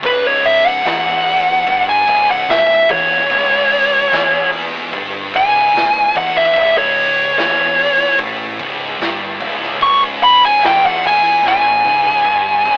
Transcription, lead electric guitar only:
0.06 0.24 B4 loud
0.27 0.45 C#5 medium
0.46 0.67 E5 loud
0.67 1.85 F#5 medium
1.89 2.28 G#5 medium
2.31 2.49 F#5 medium
2.50 2.89 E5 medium
2.91 4.49 C#5 medium
5.36 6.14 G#5 loud
6.17 6.36 F#5 medium
6.37 6.76 E5 loud
6.78 7.36 C#5 medium
7.39 8.17 C#5 loud
9.83 10.02 C#6 loud
10.24 10.42 B5 medium
10.45 10.63 G#5 loud
10.66 10.84 G5 medium
10.86 11.04 F#5 medium
11.07 11.44 G#5 loud
11.48 12.77 G#5 loud

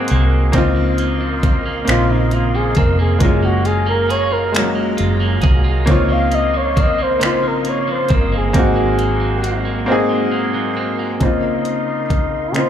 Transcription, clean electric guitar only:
0.00 0.54 G#2 medium
0.00 0.63 F#3 medium
0.00 1.02 C4 medium
0.10 0.99 A#3 medium
0.54 1.87 C#3 medium
0.76 1.20 F3 medium
0.99 1.65 A#3 medium
1.21 2.10 F3 medium
1.43 2.75 C4 medium
1.66 2.32 A#3 medium
1.88 3.30 C#3 medium
2.10 2.55 F3 soft
2.32 2.99 A#3 medium
2.55 3.20 F3 medium
2.76 3.30 C4 medium
2.99 3.42 A#3 medium
3.21 4.53 F#3 medium
3.42 3.86 A#3 medium
3.65 4.30 F4 medium
3.86 4.75 A#3 medium
4.09 5.41 G#4 medium
4.31 4.97 F4 medium
4.54 5.96 F#3 medium
4.75 5.20 A#3 soft
4.97 5.64 F4 medium
5.20 6.31 A#3 medium
5.42 6.34 G#4 medium
5.64 6.76 F4 medium
5.86 7.19 C#3 medium
6.09 6.53 F3 medium
6.31 6.98 A#3 medium
6.54 7.42 F3 medium
6.76 8.09 C4 medium
6.98 7.66 A#3 medium
7.21 8.63 C#3 medium
7.43 7.86 F3 medium
7.66 8.32 A#3 medium
7.88 8.63 F3 medium
8.09 8.79 C4 medium
8.32 8.98 A#3 medium
8.54 9.87 G#2 medium
8.76 9.20 F#3 medium
8.98 9.65 A#3 medium
9.21 10.08 F#3 medium
9.43 10.76 C4 medium
9.65 10.31 A#3 medium
9.88 11.30 G#2 medium
10.10 10.53 F#3 medium
10.32 10.99 A#3 medium
10.54 11.30 F#3 medium
10.77 11.80 C4 medium
10.99 11.80 A#3 medium

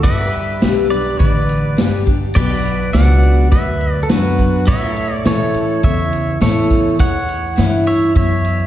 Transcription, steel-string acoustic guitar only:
0.03 1.14 G2 medium
0.61 0.89 G3 medium
0.61 0.90 B3 medium
0.61 0.90 D4 medium
0.61 0.89 G4 medium
0.90 1.19 D4 medium
0.90 1.18 G4 medium
1.20 2.30 D3 medium
1.77 2.05 G3 medium
1.77 2.06 B3 medium
1.77 2.06 D4 medium
1.77 2.04 G4 loud
2.06 2.35 D4 medium
2.06 2.34 G4 medium
2.35 3.46 B2 medium
2.93 3.49 F#3 medium
2.93 3.49 B3 medium
2.93 3.49 D4 loud
2.93 3.50 F#4 medium
3.52 4.62 F#2 medium
4.09 4.64 F#3 medium
4.09 4.65 B3 loud
4.09 4.65 D4 medium
4.09 4.65 F#4 medium
4.68 5.78 A2 medium
5.25 5.80 E3 medium
5.25 5.81 A3 medium
5.25 5.81 C#4 medium
5.25 5.81 E4 medium
5.83 6.94 E2 medium
6.41 6.96 E3 medium
6.41 6.97 A3 medium
6.41 6.97 C#4 medium
6.41 6.97 E4 loud
6.99 8.10 A2 medium
7.56 8.12 E3 medium
7.56 8.12 A3 medium
7.56 8.13 C#4 medium
7.56 8.13 E4 medium
8.15 8.67 E2 medium

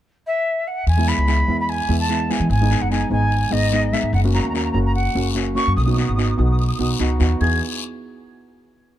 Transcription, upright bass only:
0.87 1.11 E2 medium
1.18 1.41 C#2 medium
1.48 1.80 E2 medium
1.89 2.29 E2 medium
2.40 2.48 E3 medium
2.50 2.74 G#1 medium
2.81 3.04 F#1 medium
3.11 3.43 G#1 medium
3.52 3.92 G#1 medium
4.03 4.11 G#2 medium
4.13 4.38 F#1 loud
4.44 4.68 D#2 medium
4.74 5.06 F#1 medium
5.15 5.56 F#1 medium
5.67 5.75 F#2 medium
5.77 6.01 B1 medium
6.08 6.32 G#1 medium
6.38 6.70 B1 medium
6.79 6.95 B1 medium
7.00 7.18 C#2 medium
7.20 7.39 D#2 medium
7.41 7.60 E2 medium

